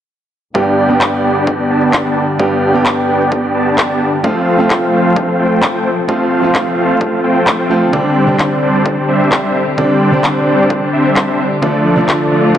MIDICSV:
0, 0, Header, 1, 5, 480
1, 0, Start_track
1, 0, Tempo, 461538
1, 571, Time_signature, 4, 2, 24, 8
1, 13084, End_track
2, 0, Start_track
2, 0, Title_t, "Supersaw synth"
2, 0, Program_c, 0, 81
2, 571, Note_on_c, 0, 62, 91
2, 572, Note_on_c, 0, 59, 95
2, 572, Note_on_c, 0, 67, 84
2, 572, Note_on_c, 0, 74, 83
2, 572, Note_on_c, 0, 79, 101
2, 902, Note_off_c, 0, 62, 0
2, 902, Note_off_c, 0, 79, 0
2, 903, Note_off_c, 0, 59, 0
2, 903, Note_off_c, 0, 67, 0
2, 903, Note_off_c, 0, 74, 0
2, 931, Note_on_c, 0, 59, 77
2, 931, Note_on_c, 0, 62, 69
2, 931, Note_on_c, 0, 67, 67
2, 931, Note_on_c, 0, 74, 67
2, 931, Note_on_c, 0, 79, 87
2, 1262, Note_off_c, 0, 59, 0
2, 1262, Note_off_c, 0, 62, 0
2, 1262, Note_off_c, 0, 67, 0
2, 1262, Note_off_c, 0, 74, 0
2, 1262, Note_off_c, 0, 79, 0
2, 1291, Note_on_c, 0, 59, 83
2, 1291, Note_on_c, 0, 62, 79
2, 1291, Note_on_c, 0, 67, 78
2, 1291, Note_on_c, 0, 74, 77
2, 1291, Note_on_c, 0, 79, 96
2, 1742, Note_off_c, 0, 59, 0
2, 1742, Note_off_c, 0, 62, 0
2, 1742, Note_off_c, 0, 67, 0
2, 1742, Note_off_c, 0, 74, 0
2, 1742, Note_off_c, 0, 79, 0
2, 1770, Note_on_c, 0, 59, 88
2, 1771, Note_on_c, 0, 62, 79
2, 1771, Note_on_c, 0, 67, 77
2, 1771, Note_on_c, 0, 74, 84
2, 1771, Note_on_c, 0, 81, 96
2, 2102, Note_off_c, 0, 59, 0
2, 2102, Note_off_c, 0, 62, 0
2, 2102, Note_off_c, 0, 67, 0
2, 2102, Note_off_c, 0, 74, 0
2, 2102, Note_off_c, 0, 81, 0
2, 2130, Note_on_c, 0, 59, 93
2, 2130, Note_on_c, 0, 62, 86
2, 2130, Note_on_c, 0, 67, 87
2, 2130, Note_on_c, 0, 74, 83
2, 2130, Note_on_c, 0, 81, 102
2, 2281, Note_off_c, 0, 67, 0
2, 2282, Note_off_c, 0, 59, 0
2, 2282, Note_off_c, 0, 62, 0
2, 2282, Note_off_c, 0, 74, 0
2, 2282, Note_off_c, 0, 81, 0
2, 2490, Note_on_c, 0, 59, 96
2, 2490, Note_on_c, 0, 62, 88
2, 2490, Note_on_c, 0, 67, 85
2, 2490, Note_on_c, 0, 74, 90
2, 2490, Note_on_c, 0, 79, 110
2, 2822, Note_off_c, 0, 59, 0
2, 2822, Note_off_c, 0, 62, 0
2, 2822, Note_off_c, 0, 67, 0
2, 2822, Note_off_c, 0, 74, 0
2, 2822, Note_off_c, 0, 79, 0
2, 2850, Note_on_c, 0, 74, 67
2, 2851, Note_on_c, 0, 59, 75
2, 2851, Note_on_c, 0, 62, 70
2, 2851, Note_on_c, 0, 67, 66
2, 2851, Note_on_c, 0, 79, 83
2, 3182, Note_off_c, 0, 59, 0
2, 3182, Note_off_c, 0, 62, 0
2, 3182, Note_off_c, 0, 67, 0
2, 3182, Note_off_c, 0, 74, 0
2, 3182, Note_off_c, 0, 79, 0
2, 3210, Note_on_c, 0, 59, 89
2, 3210, Note_on_c, 0, 62, 78
2, 3210, Note_on_c, 0, 67, 74
2, 3210, Note_on_c, 0, 74, 76
2, 3210, Note_on_c, 0, 79, 92
2, 3662, Note_off_c, 0, 59, 0
2, 3662, Note_off_c, 0, 62, 0
2, 3662, Note_off_c, 0, 67, 0
2, 3662, Note_off_c, 0, 74, 0
2, 3662, Note_off_c, 0, 79, 0
2, 3690, Note_on_c, 0, 81, 95
2, 3691, Note_on_c, 0, 59, 88
2, 3691, Note_on_c, 0, 62, 78
2, 3691, Note_on_c, 0, 67, 79
2, 3691, Note_on_c, 0, 74, 81
2, 4022, Note_off_c, 0, 59, 0
2, 4022, Note_off_c, 0, 62, 0
2, 4022, Note_off_c, 0, 67, 0
2, 4022, Note_off_c, 0, 74, 0
2, 4022, Note_off_c, 0, 81, 0
2, 4050, Note_on_c, 0, 59, 97
2, 4050, Note_on_c, 0, 62, 84
2, 4050, Note_on_c, 0, 67, 88
2, 4050, Note_on_c, 0, 74, 88
2, 4050, Note_on_c, 0, 81, 101
2, 4201, Note_off_c, 0, 59, 0
2, 4201, Note_off_c, 0, 62, 0
2, 4201, Note_off_c, 0, 67, 0
2, 4201, Note_off_c, 0, 74, 0
2, 4202, Note_off_c, 0, 81, 0
2, 4410, Note_on_c, 0, 57, 92
2, 4410, Note_on_c, 0, 60, 85
2, 4410, Note_on_c, 0, 65, 88
2, 4410, Note_on_c, 0, 72, 86
2, 4410, Note_on_c, 0, 77, 108
2, 4742, Note_off_c, 0, 57, 0
2, 4742, Note_off_c, 0, 60, 0
2, 4742, Note_off_c, 0, 65, 0
2, 4742, Note_off_c, 0, 72, 0
2, 4742, Note_off_c, 0, 77, 0
2, 4769, Note_on_c, 0, 65, 70
2, 4769, Note_on_c, 0, 72, 72
2, 4769, Note_on_c, 0, 77, 85
2, 4770, Note_on_c, 0, 57, 80
2, 4770, Note_on_c, 0, 60, 71
2, 5101, Note_off_c, 0, 60, 0
2, 5101, Note_off_c, 0, 65, 0
2, 5101, Note_off_c, 0, 72, 0
2, 5101, Note_off_c, 0, 77, 0
2, 5102, Note_off_c, 0, 57, 0
2, 5130, Note_on_c, 0, 57, 83
2, 5130, Note_on_c, 0, 60, 81
2, 5130, Note_on_c, 0, 65, 76
2, 5130, Note_on_c, 0, 72, 81
2, 5130, Note_on_c, 0, 77, 93
2, 5581, Note_off_c, 0, 65, 0
2, 5582, Note_off_c, 0, 57, 0
2, 5582, Note_off_c, 0, 60, 0
2, 5582, Note_off_c, 0, 72, 0
2, 5582, Note_off_c, 0, 77, 0
2, 5609, Note_on_c, 0, 57, 89
2, 5610, Note_on_c, 0, 60, 78
2, 5610, Note_on_c, 0, 65, 82
2, 5610, Note_on_c, 0, 72, 81
2, 5610, Note_on_c, 0, 79, 94
2, 5941, Note_off_c, 0, 57, 0
2, 5942, Note_off_c, 0, 60, 0
2, 5942, Note_off_c, 0, 65, 0
2, 5942, Note_off_c, 0, 72, 0
2, 5942, Note_off_c, 0, 79, 0
2, 5970, Note_on_c, 0, 65, 84
2, 5971, Note_on_c, 0, 57, 96
2, 5971, Note_on_c, 0, 60, 87
2, 5971, Note_on_c, 0, 72, 91
2, 5971, Note_on_c, 0, 79, 101
2, 6122, Note_off_c, 0, 57, 0
2, 6122, Note_off_c, 0, 60, 0
2, 6122, Note_off_c, 0, 65, 0
2, 6122, Note_off_c, 0, 72, 0
2, 6122, Note_off_c, 0, 79, 0
2, 6329, Note_on_c, 0, 72, 86
2, 6330, Note_on_c, 0, 57, 92
2, 6330, Note_on_c, 0, 60, 91
2, 6330, Note_on_c, 0, 65, 86
2, 6330, Note_on_c, 0, 77, 107
2, 6661, Note_off_c, 0, 65, 0
2, 6661, Note_off_c, 0, 72, 0
2, 6662, Note_off_c, 0, 57, 0
2, 6662, Note_off_c, 0, 60, 0
2, 6662, Note_off_c, 0, 77, 0
2, 6690, Note_on_c, 0, 57, 76
2, 6690, Note_on_c, 0, 60, 70
2, 6690, Note_on_c, 0, 65, 69
2, 6690, Note_on_c, 0, 72, 71
2, 6690, Note_on_c, 0, 77, 85
2, 7021, Note_off_c, 0, 57, 0
2, 7021, Note_off_c, 0, 65, 0
2, 7021, Note_off_c, 0, 72, 0
2, 7022, Note_off_c, 0, 60, 0
2, 7022, Note_off_c, 0, 77, 0
2, 7050, Note_on_c, 0, 57, 84
2, 7050, Note_on_c, 0, 60, 78
2, 7050, Note_on_c, 0, 65, 77
2, 7050, Note_on_c, 0, 72, 77
2, 7050, Note_on_c, 0, 77, 93
2, 7502, Note_off_c, 0, 57, 0
2, 7502, Note_off_c, 0, 60, 0
2, 7502, Note_off_c, 0, 65, 0
2, 7502, Note_off_c, 0, 72, 0
2, 7502, Note_off_c, 0, 77, 0
2, 7530, Note_on_c, 0, 79, 97
2, 7531, Note_on_c, 0, 57, 90
2, 7531, Note_on_c, 0, 60, 80
2, 7531, Note_on_c, 0, 65, 82
2, 7531, Note_on_c, 0, 72, 79
2, 7862, Note_off_c, 0, 57, 0
2, 7862, Note_off_c, 0, 60, 0
2, 7862, Note_off_c, 0, 65, 0
2, 7862, Note_off_c, 0, 72, 0
2, 7862, Note_off_c, 0, 79, 0
2, 7891, Note_on_c, 0, 57, 91
2, 7891, Note_on_c, 0, 60, 86
2, 7891, Note_on_c, 0, 65, 87
2, 7891, Note_on_c, 0, 72, 85
2, 7891, Note_on_c, 0, 79, 108
2, 8042, Note_off_c, 0, 57, 0
2, 8042, Note_off_c, 0, 60, 0
2, 8042, Note_off_c, 0, 65, 0
2, 8042, Note_off_c, 0, 72, 0
2, 8042, Note_off_c, 0, 79, 0
2, 8250, Note_on_c, 0, 55, 93
2, 8250, Note_on_c, 0, 60, 87
2, 8250, Note_on_c, 0, 62, 89
2, 8250, Note_on_c, 0, 72, 86
2, 8250, Note_on_c, 0, 74, 101
2, 8582, Note_off_c, 0, 55, 0
2, 8582, Note_off_c, 0, 60, 0
2, 8582, Note_off_c, 0, 62, 0
2, 8582, Note_off_c, 0, 72, 0
2, 8582, Note_off_c, 0, 74, 0
2, 8610, Note_on_c, 0, 55, 76
2, 8610, Note_on_c, 0, 60, 66
2, 8610, Note_on_c, 0, 62, 69
2, 8610, Note_on_c, 0, 72, 70
2, 8610, Note_on_c, 0, 74, 84
2, 8942, Note_off_c, 0, 55, 0
2, 8942, Note_off_c, 0, 60, 0
2, 8942, Note_off_c, 0, 62, 0
2, 8942, Note_off_c, 0, 72, 0
2, 8942, Note_off_c, 0, 74, 0
2, 8971, Note_on_c, 0, 55, 87
2, 8971, Note_on_c, 0, 60, 81
2, 8971, Note_on_c, 0, 62, 76
2, 8971, Note_on_c, 0, 72, 75
2, 8971, Note_on_c, 0, 74, 93
2, 9422, Note_off_c, 0, 55, 0
2, 9422, Note_off_c, 0, 60, 0
2, 9422, Note_off_c, 0, 62, 0
2, 9422, Note_off_c, 0, 72, 0
2, 9422, Note_off_c, 0, 74, 0
2, 9451, Note_on_c, 0, 55, 85
2, 9451, Note_on_c, 0, 60, 80
2, 9451, Note_on_c, 0, 62, 81
2, 9451, Note_on_c, 0, 72, 84
2, 9451, Note_on_c, 0, 76, 97
2, 9782, Note_off_c, 0, 55, 0
2, 9782, Note_off_c, 0, 60, 0
2, 9782, Note_off_c, 0, 62, 0
2, 9782, Note_off_c, 0, 72, 0
2, 9782, Note_off_c, 0, 76, 0
2, 9810, Note_on_c, 0, 55, 93
2, 9811, Note_on_c, 0, 60, 83
2, 9811, Note_on_c, 0, 62, 86
2, 9811, Note_on_c, 0, 72, 86
2, 9811, Note_on_c, 0, 76, 102
2, 9962, Note_off_c, 0, 55, 0
2, 9962, Note_off_c, 0, 60, 0
2, 9962, Note_off_c, 0, 62, 0
2, 9962, Note_off_c, 0, 72, 0
2, 9962, Note_off_c, 0, 76, 0
2, 10171, Note_on_c, 0, 55, 98
2, 10171, Note_on_c, 0, 60, 90
2, 10171, Note_on_c, 0, 62, 87
2, 10171, Note_on_c, 0, 72, 89
2, 10171, Note_on_c, 0, 74, 107
2, 10502, Note_off_c, 0, 55, 0
2, 10502, Note_off_c, 0, 60, 0
2, 10502, Note_off_c, 0, 62, 0
2, 10502, Note_off_c, 0, 72, 0
2, 10502, Note_off_c, 0, 74, 0
2, 10531, Note_on_c, 0, 55, 77
2, 10531, Note_on_c, 0, 60, 67
2, 10531, Note_on_c, 0, 62, 72
2, 10531, Note_on_c, 0, 72, 69
2, 10531, Note_on_c, 0, 74, 87
2, 10862, Note_off_c, 0, 55, 0
2, 10862, Note_off_c, 0, 60, 0
2, 10862, Note_off_c, 0, 62, 0
2, 10862, Note_off_c, 0, 72, 0
2, 10862, Note_off_c, 0, 74, 0
2, 10890, Note_on_c, 0, 55, 84
2, 10890, Note_on_c, 0, 60, 75
2, 10890, Note_on_c, 0, 62, 76
2, 10890, Note_on_c, 0, 72, 76
2, 10890, Note_on_c, 0, 74, 92
2, 11342, Note_off_c, 0, 55, 0
2, 11342, Note_off_c, 0, 60, 0
2, 11342, Note_off_c, 0, 62, 0
2, 11342, Note_off_c, 0, 72, 0
2, 11342, Note_off_c, 0, 74, 0
2, 11369, Note_on_c, 0, 62, 80
2, 11369, Note_on_c, 0, 76, 95
2, 11370, Note_on_c, 0, 55, 87
2, 11370, Note_on_c, 0, 60, 78
2, 11370, Note_on_c, 0, 72, 83
2, 11701, Note_off_c, 0, 55, 0
2, 11701, Note_off_c, 0, 60, 0
2, 11701, Note_off_c, 0, 62, 0
2, 11701, Note_off_c, 0, 72, 0
2, 11701, Note_off_c, 0, 76, 0
2, 11730, Note_on_c, 0, 55, 94
2, 11730, Note_on_c, 0, 60, 86
2, 11730, Note_on_c, 0, 62, 86
2, 11730, Note_on_c, 0, 72, 85
2, 11730, Note_on_c, 0, 76, 105
2, 11881, Note_off_c, 0, 55, 0
2, 11881, Note_off_c, 0, 60, 0
2, 11881, Note_off_c, 0, 62, 0
2, 11881, Note_off_c, 0, 72, 0
2, 11881, Note_off_c, 0, 76, 0
2, 12091, Note_on_c, 0, 53, 96
2, 12091, Note_on_c, 0, 57, 90
2, 12091, Note_on_c, 0, 62, 85
2, 12091, Note_on_c, 0, 69, 88
2, 12091, Note_on_c, 0, 74, 102
2, 12422, Note_off_c, 0, 53, 0
2, 12422, Note_off_c, 0, 57, 0
2, 12422, Note_off_c, 0, 62, 0
2, 12422, Note_off_c, 0, 69, 0
2, 12422, Note_off_c, 0, 74, 0
2, 12450, Note_on_c, 0, 53, 79
2, 12450, Note_on_c, 0, 57, 70
2, 12450, Note_on_c, 0, 62, 72
2, 12450, Note_on_c, 0, 74, 86
2, 12451, Note_on_c, 0, 69, 67
2, 12782, Note_off_c, 0, 53, 0
2, 12782, Note_off_c, 0, 57, 0
2, 12782, Note_off_c, 0, 62, 0
2, 12782, Note_off_c, 0, 69, 0
2, 12782, Note_off_c, 0, 74, 0
2, 12810, Note_on_c, 0, 57, 78
2, 12810, Note_on_c, 0, 62, 77
2, 12811, Note_on_c, 0, 53, 84
2, 12811, Note_on_c, 0, 69, 76
2, 12811, Note_on_c, 0, 74, 98
2, 13084, Note_off_c, 0, 53, 0
2, 13084, Note_off_c, 0, 57, 0
2, 13084, Note_off_c, 0, 62, 0
2, 13084, Note_off_c, 0, 69, 0
2, 13084, Note_off_c, 0, 74, 0
2, 13084, End_track
3, 0, Start_track
3, 0, Title_t, "String section"
3, 0, Program_c, 1, 48
3, 571, Note_on_c, 1, 50, 75
3, 571, Note_on_c, 1, 67, 83
3, 572, Note_on_c, 1, 59, 68
3, 4372, Note_off_c, 1, 67, 0
3, 4373, Note_off_c, 1, 50, 0
3, 4373, Note_off_c, 1, 59, 0
3, 4411, Note_on_c, 1, 60, 72
3, 4411, Note_on_c, 1, 69, 89
3, 4412, Note_on_c, 1, 53, 73
3, 8213, Note_off_c, 1, 53, 0
3, 8213, Note_off_c, 1, 69, 0
3, 8251, Note_on_c, 1, 50, 76
3, 8251, Note_on_c, 1, 67, 85
3, 12050, Note_off_c, 1, 60, 0
3, 12052, Note_off_c, 1, 67, 0
3, 12053, Note_off_c, 1, 50, 0
3, 12092, Note_on_c, 1, 50, 77
3, 12092, Note_on_c, 1, 65, 85
3, 12093, Note_on_c, 1, 57, 70
3, 13084, Note_off_c, 1, 50, 0
3, 13084, Note_off_c, 1, 57, 0
3, 13084, Note_off_c, 1, 65, 0
3, 13084, End_track
4, 0, Start_track
4, 0, Title_t, "Grand piano"
4, 0, Program_c, 2, 0
4, 565, Note_on_c, 2, 43, 85
4, 568, Note_on_c, 2, 55, 81
4, 571, Note_on_c, 2, 59, 81
4, 574, Note_on_c, 2, 62, 76
4, 577, Note_on_c, 2, 67, 98
4, 786, Control_c, 2, 64, 127
4, 899, Note_off_c, 2, 43, 0
4, 901, Note_off_c, 2, 55, 0
4, 902, Note_off_c, 2, 59, 0
4, 904, Note_off_c, 2, 62, 0
4, 905, Note_off_c, 2, 67, 0
4, 918, Note_on_c, 2, 43, 90
4, 925, Note_on_c, 2, 55, 75
4, 931, Note_on_c, 2, 59, 77
4, 937, Note_on_c, 2, 62, 80
4, 944, Note_on_c, 2, 67, 91
4, 2456, Note_off_c, 2, 43, 0
4, 2459, Note_off_c, 2, 55, 0
4, 2462, Note_off_c, 2, 59, 0
4, 2465, Note_off_c, 2, 62, 0
4, 2468, Note_off_c, 2, 67, 0
4, 2484, Note_on_c, 2, 43, 87
4, 2487, Note_on_c, 2, 55, 81
4, 2491, Note_on_c, 2, 59, 82
4, 2494, Note_on_c, 2, 62, 77
4, 2497, Note_on_c, 2, 67, 96
4, 2819, Note_off_c, 2, 43, 0
4, 2820, Note_off_c, 2, 55, 0
4, 2822, Note_off_c, 2, 59, 0
4, 2823, Note_off_c, 2, 62, 0
4, 2825, Note_off_c, 2, 67, 0
4, 2838, Note_on_c, 2, 43, 84
4, 2844, Note_on_c, 2, 55, 81
4, 2851, Note_on_c, 2, 59, 79
4, 2858, Note_on_c, 2, 62, 78
4, 2864, Note_on_c, 2, 67, 96
4, 4376, Note_off_c, 2, 43, 0
4, 4379, Note_off_c, 2, 55, 0
4, 4382, Note_off_c, 2, 59, 0
4, 4385, Note_off_c, 2, 62, 0
4, 4388, Note_off_c, 2, 67, 0
4, 4405, Note_on_c, 2, 53, 92
4, 4409, Note_on_c, 2, 57, 82
4, 4413, Note_on_c, 2, 60, 86
4, 4417, Note_on_c, 2, 65, 99
4, 4423, Control_c, 2, 64, 0
4, 4608, Control_c, 2, 64, 127
4, 4739, Note_off_c, 2, 53, 0
4, 4741, Note_off_c, 2, 57, 0
4, 4743, Note_off_c, 2, 60, 0
4, 4745, Note_off_c, 2, 65, 0
4, 4759, Note_on_c, 2, 53, 87
4, 4766, Note_on_c, 2, 57, 82
4, 4775, Note_on_c, 2, 60, 78
4, 4783, Note_on_c, 2, 65, 97
4, 6296, Note_off_c, 2, 53, 0
4, 6300, Note_off_c, 2, 57, 0
4, 6304, Note_off_c, 2, 60, 0
4, 6308, Note_off_c, 2, 65, 0
4, 6324, Note_on_c, 2, 53, 89
4, 6328, Note_on_c, 2, 57, 84
4, 6332, Note_on_c, 2, 60, 80
4, 6336, Note_on_c, 2, 65, 95
4, 6659, Note_off_c, 2, 53, 0
4, 6661, Note_off_c, 2, 57, 0
4, 6663, Note_off_c, 2, 60, 0
4, 6665, Note_off_c, 2, 65, 0
4, 6677, Note_on_c, 2, 53, 87
4, 6685, Note_on_c, 2, 57, 83
4, 6694, Note_on_c, 2, 60, 81
4, 6702, Note_on_c, 2, 65, 97
4, 7980, Note_off_c, 2, 53, 0
4, 7984, Note_off_c, 2, 57, 0
4, 7988, Note_off_c, 2, 60, 0
4, 7992, Note_off_c, 2, 65, 0
4, 8003, Note_on_c, 2, 53, 87
4, 8007, Note_on_c, 2, 57, 83
4, 8011, Note_on_c, 2, 60, 82
4, 8015, Note_on_c, 2, 65, 97
4, 8218, Note_off_c, 2, 53, 0
4, 8220, Note_off_c, 2, 57, 0
4, 8222, Note_off_c, 2, 60, 0
4, 8224, Note_off_c, 2, 65, 0
4, 8244, Note_on_c, 2, 50, 90
4, 8248, Note_on_c, 2, 55, 83
4, 8252, Note_on_c, 2, 60, 82
4, 8256, Note_on_c, 2, 62, 101
4, 8264, Control_c, 2, 64, 0
4, 8428, Control_c, 2, 64, 127
4, 8579, Note_off_c, 2, 50, 0
4, 8581, Note_off_c, 2, 55, 0
4, 8583, Note_off_c, 2, 60, 0
4, 8585, Note_off_c, 2, 62, 0
4, 8597, Note_on_c, 2, 50, 87
4, 8606, Note_on_c, 2, 55, 76
4, 8614, Note_on_c, 2, 60, 78
4, 8622, Note_on_c, 2, 62, 95
4, 10135, Note_off_c, 2, 50, 0
4, 10140, Note_off_c, 2, 55, 0
4, 10144, Note_off_c, 2, 60, 0
4, 10148, Note_off_c, 2, 62, 0
4, 10165, Note_on_c, 2, 50, 90
4, 10169, Note_on_c, 2, 55, 84
4, 10174, Note_on_c, 2, 60, 82
4, 10177, Note_on_c, 2, 62, 99
4, 10499, Note_off_c, 2, 50, 0
4, 10501, Note_off_c, 2, 55, 0
4, 10503, Note_off_c, 2, 60, 0
4, 10505, Note_off_c, 2, 62, 0
4, 10519, Note_on_c, 2, 50, 89
4, 10527, Note_on_c, 2, 55, 80
4, 10535, Note_on_c, 2, 60, 79
4, 10543, Note_on_c, 2, 62, 94
4, 12056, Note_off_c, 2, 50, 0
4, 12060, Note_off_c, 2, 55, 0
4, 12064, Note_off_c, 2, 60, 0
4, 12068, Note_off_c, 2, 62, 0
4, 12084, Note_on_c, 2, 50, 90
4, 12088, Note_on_c, 2, 53, 83
4, 12092, Note_on_c, 2, 57, 87
4, 12096, Note_on_c, 2, 62, 96
4, 12104, Control_c, 2, 64, 0
4, 12294, Control_c, 2, 64, 127
4, 12418, Note_off_c, 2, 50, 0
4, 12421, Note_off_c, 2, 53, 0
4, 12423, Note_off_c, 2, 57, 0
4, 12425, Note_off_c, 2, 62, 0
4, 12438, Note_on_c, 2, 50, 87
4, 12446, Note_on_c, 2, 53, 84
4, 12454, Note_on_c, 2, 57, 83
4, 12463, Note_on_c, 2, 62, 98
4, 13084, Note_off_c, 2, 50, 0
4, 13084, Note_off_c, 2, 53, 0
4, 13084, Note_off_c, 2, 57, 0
4, 13084, Note_off_c, 2, 62, 0
4, 13084, End_track
5, 0, Start_track
5, 0, Title_t, "Drums"
5, 571, Note_on_c, 9, 36, 111
5, 675, Note_off_c, 9, 36, 0
5, 1050, Note_on_c, 9, 39, 116
5, 1051, Note_on_c, 9, 36, 117
5, 1154, Note_off_c, 9, 39, 0
5, 1155, Note_off_c, 9, 36, 0
5, 1531, Note_on_c, 9, 36, 120
5, 1635, Note_off_c, 9, 36, 0
5, 2010, Note_on_c, 9, 39, 124
5, 2011, Note_on_c, 9, 36, 108
5, 2114, Note_off_c, 9, 39, 0
5, 2115, Note_off_c, 9, 36, 0
5, 2491, Note_on_c, 9, 36, 117
5, 2595, Note_off_c, 9, 36, 0
5, 2971, Note_on_c, 9, 36, 117
5, 2971, Note_on_c, 9, 39, 120
5, 3075, Note_off_c, 9, 36, 0
5, 3075, Note_off_c, 9, 39, 0
5, 3451, Note_on_c, 9, 36, 115
5, 3555, Note_off_c, 9, 36, 0
5, 3930, Note_on_c, 9, 39, 121
5, 3931, Note_on_c, 9, 36, 113
5, 4034, Note_off_c, 9, 39, 0
5, 4035, Note_off_c, 9, 36, 0
5, 4411, Note_on_c, 9, 36, 120
5, 4515, Note_off_c, 9, 36, 0
5, 4891, Note_on_c, 9, 36, 120
5, 4891, Note_on_c, 9, 39, 117
5, 4995, Note_off_c, 9, 36, 0
5, 4995, Note_off_c, 9, 39, 0
5, 5371, Note_on_c, 9, 36, 124
5, 5475, Note_off_c, 9, 36, 0
5, 5849, Note_on_c, 9, 39, 120
5, 5851, Note_on_c, 9, 36, 121
5, 5953, Note_off_c, 9, 39, 0
5, 5955, Note_off_c, 9, 36, 0
5, 6330, Note_on_c, 9, 36, 118
5, 6434, Note_off_c, 9, 36, 0
5, 6809, Note_on_c, 9, 39, 105
5, 6810, Note_on_c, 9, 36, 121
5, 6913, Note_off_c, 9, 39, 0
5, 6914, Note_off_c, 9, 36, 0
5, 7290, Note_on_c, 9, 36, 112
5, 7394, Note_off_c, 9, 36, 0
5, 7769, Note_on_c, 9, 39, 111
5, 7770, Note_on_c, 9, 36, 110
5, 7873, Note_off_c, 9, 39, 0
5, 7874, Note_off_c, 9, 36, 0
5, 8250, Note_on_c, 9, 36, 117
5, 8354, Note_off_c, 9, 36, 0
5, 8729, Note_on_c, 9, 39, 108
5, 8730, Note_on_c, 9, 36, 111
5, 8833, Note_off_c, 9, 39, 0
5, 8834, Note_off_c, 9, 36, 0
5, 9211, Note_on_c, 9, 36, 115
5, 9315, Note_off_c, 9, 36, 0
5, 9690, Note_on_c, 9, 39, 112
5, 9691, Note_on_c, 9, 36, 110
5, 9794, Note_off_c, 9, 39, 0
5, 9795, Note_off_c, 9, 36, 0
5, 10171, Note_on_c, 9, 36, 113
5, 10275, Note_off_c, 9, 36, 0
5, 10650, Note_on_c, 9, 39, 106
5, 10651, Note_on_c, 9, 36, 114
5, 10754, Note_off_c, 9, 39, 0
5, 10755, Note_off_c, 9, 36, 0
5, 11131, Note_on_c, 9, 36, 114
5, 11235, Note_off_c, 9, 36, 0
5, 11609, Note_on_c, 9, 39, 112
5, 11611, Note_on_c, 9, 36, 105
5, 11713, Note_off_c, 9, 39, 0
5, 11715, Note_off_c, 9, 36, 0
5, 12091, Note_on_c, 9, 36, 113
5, 12195, Note_off_c, 9, 36, 0
5, 12570, Note_on_c, 9, 39, 113
5, 12571, Note_on_c, 9, 36, 108
5, 12674, Note_off_c, 9, 39, 0
5, 12675, Note_off_c, 9, 36, 0
5, 13051, Note_on_c, 9, 36, 110
5, 13084, Note_off_c, 9, 36, 0
5, 13084, End_track
0, 0, End_of_file